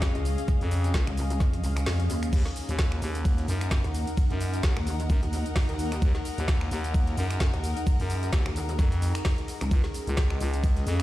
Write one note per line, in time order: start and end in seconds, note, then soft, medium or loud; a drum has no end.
0.00 0.13 F2 loud
0.00 2.29 C#4 medium
0.00 3.51 C#4 medium
0.00 2.29 G#4 medium
0.00 3.38 G#4 medium
0.00 3.18 D#5 medium
0.00 2.29 F5 medium
0.00 2.33 F5 medium
0.00 kick loud
0.00 snare loud
0.00 shaker medium
0.00 shaker soft
0.15 0.36 C#2 loud
0.15 closed hi-hat medium
0.25 open hi-hat loud
0.25 shaker medium
0.38 closed hi-hat medium
0.38 shaker soft
0.48 kick loud
0.48 shaker medium
0.48 shaker soft
0.61 0.93 F2 loud
0.61 snare soft
0.61 open hi-hat medium
0.71 open hi-hat loud
0.71 shaker medium
0.84 snare medium
0.84 closed hi-hat medium
0.84 shaker soft
0.94 1.05 C#2 loud
0.94 kick loud
0.94 snare loud
0.94 shaker medium
0.94 shaker soft
1.07 1.39 C#2 loud
1.07 finger snap medium
1.07 closed hi-hat soft
1.17 open hi-hat loud
1.17 shaker medium
1.30 closed hi-hat soft
1.30 closed hi-hat medium
1.30 shaker soft
1.40 1.62 F2 loud
1.40 kick loud
1.40 snare soft
1.40 shaker medium
1.40 shaker soft
1.53 closed hi-hat soft
1.53 closed hi-hat medium
1.64 1.85 C#2 loud
1.64 snare soft
1.64 open hi-hat loud
1.64 shaker medium
1.77 finger snap medium
1.77 closed hi-hat medium
1.77 shaker soft
1.86 2.08 F2 loud
1.86 snare loud
1.86 open hi-hat medium
1.86 shaker soft
2.00 closed hi-hat medium
2.10 2.31 D#2 loud
2.10 open hi-hat loud
2.10 shaker medium
2.23 finger snap medium
2.23 closed hi-hat medium
2.23 shaker soft
2.33 2.44 D#2 medium
2.33 11.03 D#4 medium
2.33 9.67 D#4 medium
2.33 5.98 A#4 medium
2.33 9.67 F#5 medium
2.33 kick loud
2.33 crash medium
2.33 ride medium
2.33 shaker medium
2.33 shaker soft
2.45 snare soft
2.45 closed hi-hat soft
2.56 open hi-hat loud
2.56 shaker medium
2.69 3.00 D#2 medium
2.69 closed hi-hat medium
2.69 shaker soft
2.79 10.29 A#4 medium
2.79 kick loud
2.79 snare loud
2.79 ride medium
2.79 shaker medium
2.79 shaker soft
2.92 9.71 F#5 medium
2.92 finger snap medium
2.92 snare medium
3.02 3.47 D#2 loud
3.02 open hi-hat loud
3.02 shaker medium
3.15 closed hi-hat soft
3.15 closed hi-hat medium
3.15 shaker soft
3.25 kick loud
3.25 ride medium
3.25 shaker medium
3.25 shaker soft
3.38 snare soft
3.38 closed hi-hat medium
3.48 3.82 F#2 loud
3.48 snare soft
3.48 open hi-hat loud
3.48 shaker medium
3.61 finger snap medium
3.61 snare soft
3.61 closed hi-hat medium
3.61 shaker soft
3.71 kick loud
3.71 snare loud
3.71 ride medium
3.71 shaker medium
3.71 shaker soft
3.84 4.05 D#2 loud
3.84 closed hi-hat medium
3.94 open hi-hat loud
3.94 shaker medium
4.07 closed hi-hat medium
4.07 shaker soft
4.17 kick loud
4.17 ride medium
4.17 shaker medium
4.17 shaker soft
4.30 4.62 F#2 loud
4.30 snare soft
4.30 closed hi-hat soft
4.40 open hi-hat loud
4.40 shaker medium
4.53 snare medium
4.53 closed hi-hat medium
4.53 shaker soft
4.63 4.75 D#2 medium
4.63 kick loud
4.63 snare loud
4.63 ride medium
4.63 shaker medium
4.63 shaker soft
4.77 5.08 D#2 loud
4.77 finger snap medium
4.87 open hi-hat loud
4.87 shaker medium
5.00 closed hi-hat soft
5.00 closed hi-hat medium
5.00 shaker soft
5.10 5.21 F#2 loud
5.10 kick loud
5.10 ride medium
5.10 shaker medium
5.10 shaker soft
5.23 5.44 D#2 loud
5.23 closed hi-hat soft
5.23 closed hi-hat medium
5.33 snare soft
5.33 open hi-hat loud
5.33 shaker medium
5.46 closed hi-hat medium
5.46 shaker soft
5.56 kick loud
5.56 snare loud
5.56 open hi-hat medium
5.56 ride medium
5.56 shaker soft
5.69 6.00 D#2 loud
5.69 closed hi-hat medium
5.79 open hi-hat loud
5.79 shaker medium
5.92 finger snap medium
5.92 closed hi-hat medium
5.92 shaker soft
6.02 6.13 D#2 loud
6.02 11.03 G#4 medium
6.02 kick loud
6.02 ride medium
6.02 shaker medium
6.02 shaker soft
6.15 snare soft
6.15 closed hi-hat soft
6.25 open hi-hat loud
6.25 shaker medium
6.38 6.70 D#2 loud
6.38 closed hi-hat medium
6.38 shaker soft
6.48 kick loud
6.48 snare loud
6.48 ride medium
6.48 shaker medium
6.48 shaker soft
6.61 finger snap medium
6.61 snare medium
6.71 7.16 D#2 loud
6.71 open hi-hat loud
6.71 shaker medium
6.84 closed hi-hat medium
6.84 closed hi-hat soft
6.84 shaker soft
6.94 kick loud
6.94 ride medium
6.94 shaker medium
6.94 shaker soft
7.07 snare soft
7.07 closed hi-hat medium
7.17 7.51 F#2 loud
7.17 snare soft
7.17 open hi-hat loud
7.17 shaker medium
7.30 finger snap medium
7.30 snare medium
7.30 closed hi-hat medium
7.30 shaker soft
7.40 kick loud
7.40 snare loud
7.40 ride medium
7.40 shaker medium
7.40 shaker soft
7.54 7.75 D#2 loud
7.54 closed hi-hat medium
7.64 open hi-hat loud
7.64 shaker medium
7.77 closed hi-hat medium
7.77 shaker soft
7.87 kick loud
7.87 ride medium
7.87 shaker medium
7.87 shaker soft
8.00 8.31 F#2 medium
8.00 snare soft
8.00 open hi-hat medium
8.10 open hi-hat loud
8.10 shaker medium
8.23 snare medium
8.23 closed hi-hat medium
8.23 shaker soft
8.33 8.44 D#2 loud
8.33 kick loud
8.33 snare loud
8.33 ride medium
8.33 shaker medium
8.33 shaker soft
8.46 8.77 D#2 loud
8.46 finger snap medium
8.46 closed hi-hat soft
8.56 open hi-hat loud
8.56 shaker medium
8.69 closed hi-hat medium
8.69 shaker soft
8.79 9.13 F2 loud
8.79 kick loud
8.79 snare soft
8.79 ride medium
8.79 shaker medium
8.79 shaker soft
8.92 closed hi-hat soft
8.92 closed hi-hat medium
9.02 snare soft
9.02 open hi-hat loud
9.02 shaker medium
9.15 finger snap medium
9.15 closed hi-hat medium
9.15 shaker soft
9.25 kick loud
9.25 snare loud
9.25 open hi-hat medium
9.25 ride medium
9.25 shaker soft
9.38 closed hi-hat medium
9.48 open hi-hat loud
9.48 shaker medium
9.61 9.70 C#2 medium
9.61 finger snap medium
9.61 closed hi-hat medium
9.61 shaker soft
9.71 9.82 C#2 loud
9.71 11.03 C#4 medium
9.71 11.03 F5 medium
9.71 kick loud
9.71 ride medium
9.71 shaker medium
9.71 shaker soft
9.84 snare soft
9.84 closed hi-hat soft
9.94 open hi-hat loud
9.94 shaker medium
10.07 10.39 C#2 loud
10.07 closed hi-hat medium
10.07 shaker soft
10.17 kick loud
10.17 snare loud
10.17 ride medium
10.17 shaker medium
10.17 shaker soft
10.30 finger snap medium
10.30 snare medium
10.36 11.03 G#4 medium
10.36 11.03 D#5 medium
10.41 10.85 C#2 loud
10.41 open hi-hat loud
10.41 shaker medium
10.54 closed hi-hat medium
10.54 closed hi-hat soft
10.54 shaker soft
10.64 kick loud
10.64 ride medium
10.64 shaker medium
10.64 shaker soft
10.77 snare soft
10.77 closed hi-hat medium
10.87 11.03 F2 loud
10.87 11.03 F5 medium
10.87 snare soft
10.87 open hi-hat loud
10.87 shaker medium